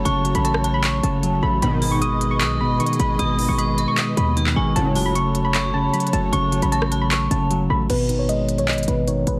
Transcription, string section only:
X:1
M:4/4
L:1/8
Q:1/4=153
K:G#phr
V:1 name="String section"
[F,FAc]8 | [G,GBd]8- | [G,GBd]8 | [F,FAc]8- |
[F,FAc]8 | z8 |]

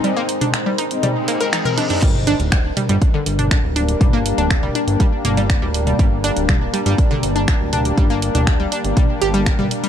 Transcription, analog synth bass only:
X:1
M:4/4
L:1/16
Q:1/4=121
K:Gphr
V:1 name="Analog synth bass" clef=bass
z16 | G,,,3 D,,,3 z G,,, z2 G,,,3 D,,,3 | G,,,3 D,,,3 z G,,, z2 G,,,3 D,,,3 | G,,,3 D,,,3 z G,,, z2 G,,,3 D,,,3 |
G,,,3 D,,,3 z G,,, z2 G,,,3 G,,, z2 |]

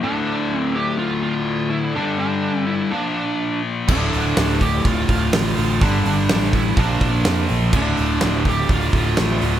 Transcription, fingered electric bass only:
X:1
M:4/4
L:1/8
Q:1/4=125
K:Dm
V:1 name="Fingered electric bass" clef=bass
z8 | z8 | D,,, D,,, D,,,2 D,,, D,,, A,,, A,,, | G,,, G,,, A,,,2 B,,, B,,, F,, B,,, |
D,,, D,,, D,,,2 D,,, D,,, A,,, D,,, |]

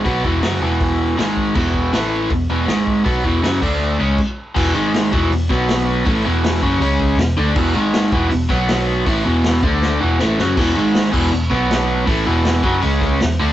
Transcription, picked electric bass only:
X:1
M:4/4
L:1/8
Q:1/4=160
K:Emix
V:1 name="Picked electric bass" clef=bass
B,,, E,,, F,,, E,,,3 G,,,2 | E,,,2 A,,,2 E,,, E,,, G,,,2 | B,,, E,,, F,,, D,,2 C,, z2 | E,,, G,,,2 E,,, E,,, B,,,3 |
A,,, E,,,2 F,,, C,,2 E,,, D,, | E,,, G,,,2 E,,, E,,, B,,,3 | A,,, E,,,2 D,,2 E,,, A,,, F,,, | E,,, G,,,2 E,,, E,,, B,,,3 |
A,,, E,,,2 F,,, C,,2 E,,, D,, |]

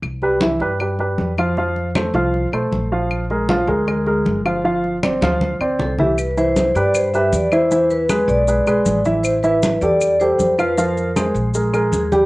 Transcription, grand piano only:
X:1
M:4/4
L:1/8
Q:1/4=156
K:C
V:1 name="Grand piano"
z [G,GB] [E,Ee] [G,GB] [G,GB] [G,GB]2 [F,Ff] | [F,Ff]2 [A,Ac] [F,Ff]2 [A,Ac]2 [F,Ff]- | [F,Ff] [_A,_A_B] [F,Ff] [A,AB] [A,AB] [A,AB]2 [F,Ff] | [F,Ff]2 [Ccd] [F,Ff]2 [Ccd]2 [E,Ee] |
z [E,Ee]2 [G,GB]2 [G,GB]2 [E,Ee] | [E,Ee]2 [^G,^GB]2 [G,GB] [G,GB]2 [E,Ee]- | [E,Ee] [E,Ee]2 [G,GA]2 [G,GA]2 [F,Ff] | [F,Ff]2 [_A,_Ac]2 [A,A_B] [A,AB]2 [G,Gg] |]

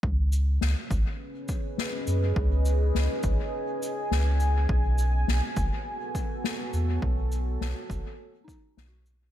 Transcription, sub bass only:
X:1
M:4/4
L:1/8
Q:"Swing 16ths" 1/4=103
K:Bmix
V:1 name="Sub bass" clef=bass
C,,2 C,, G,,, z3 F,, | C,,2 C,, G,,, z2 C,,2 | B,,,2 B,,, F,,, z3 E,, | B,,,2 B,,, F,,, z2 B,,,2 |]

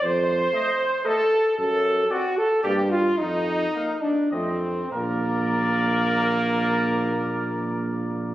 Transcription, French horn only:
X:1
M:3/4
L:1/8
Q:1/4=105
K:Bb
V:1 name="French horn"
c4 A2 | A2 ^F A G =F | E3 D C2 | B,6- |
B,6 |]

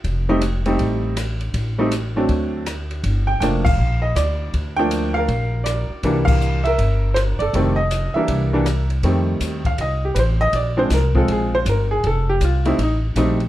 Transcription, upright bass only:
X:1
M:4/4
L:1/8
Q:"Swing" 1/4=160
K:Fmix
V:1 name="Upright bass" clef=bass
F,,,4 A,,,4 | A,,,4 D,,4 | G,,,2 F,,,2 B,,,2 D,,2 | D,,4 B,,,3 z |
C,,4 G,,,3 _G,,, | F,,,3 z C,,4 | F,,2 E,,2 C,,2 A,,,2 | B,,,2 C,,2 B,,,2 G,,,2 |
F,,,2 C,,2 A,,,2 B,,,2 |]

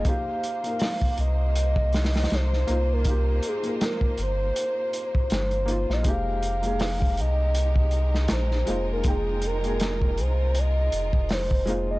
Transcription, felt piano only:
X:1
M:4/4
L:1/16
Q:"Swing 16ths" 1/4=80
K:Fm
V:1 name="Felt piano"
[B,EG]3 [B,EB] z8 z2 [B,EF]2 | [B,EG]3 [B,EB] z8 z2 [B,EF]2 | [A,B,EG]3 [A,B,EA] z8 z2 [A,B,EF]2 | [A,B,Eg]3 [A,B,EA] z8 z2 [A,B,EF]2 |]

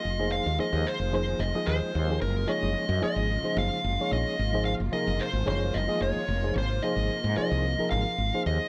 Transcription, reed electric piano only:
X:1
M:4/4
L:1/16
Q:1/4=110
K:Abmix
V:1 name="Reed electric piano"
z [F,B,EAc]2 z [F,B,EAc]3 z [F,B,EAc]2 z [F,B,EAe]3 z [F,B,EAc] | z2 [F,B,EAd]3 z [F,B,EAe]2 z [F,B,EAc]3 z [F,B,EAd]3 | z [F,B,EAc]2 z [F,B,EAB]3 z [F,B,EAd]2 z [F,B,EAe]3 z [F,B,EAc] | z2 [F,B,EAc]3 z [F,B,EAc]2 z [F,B,EAB]3 z [F,B,EAc]3 |]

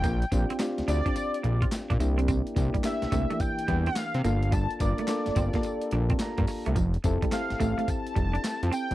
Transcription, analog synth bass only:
X:1
M:4/4
L:1/16
Q:"Swing 16ths" 1/4=107
K:F
V:1 name="Analog synth bass" clef=bass
B,,,2 B,,, z2 D,, D,, z3 B,,,2 z B,, C,,2- | C,,2 C,, z2 C,, C,, z3 E,,2 z C, G,,,2- | G,,,2 G,,, z2 G,,, G,,, z3 B,,,2 z G,, z C,, | F,,,2 F,,, z2 A,,, A,,, z3 F,,,2 z F,, z F,,, |]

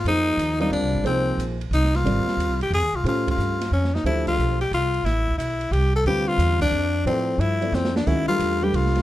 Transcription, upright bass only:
X:1
M:3/4
L:1/8
Q:"Swing" 1/4=179
K:Fdor
V:1 name="Upright bass" clef=bass
F,,2 E,,2 (3D,, C,, A,,, | C,,2 B,,,2 C,,2 | A,,, z (3E,, C,, A,,, (3F,, E,, C,, | =A,,2 G,,2 ^E,,2 |
[K:Ddor] D,,2 B,,,2 C,,2 | A,,,2 B,,,2 C,,2 | D,,2 E,,2 F,,2 | A,,2 G,,2 F,,2 |
D,, z E,,2 C,,2 |]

